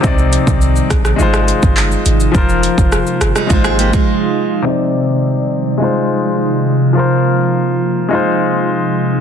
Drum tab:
HH |--x---x---x---x-|--x---x---x-----|----------------|----------------|
SH |xxxxxxxxxxxxxxxx|xxxxxxxxxxxx----|----------------|----------------|
CP |------------x---|----------------|----------------|----------------|
SD |------rr-r------|----r-rr-r------|----------------|----------------|
BD |o--o--o----o----|o--o----o--o----|----------------|----------------|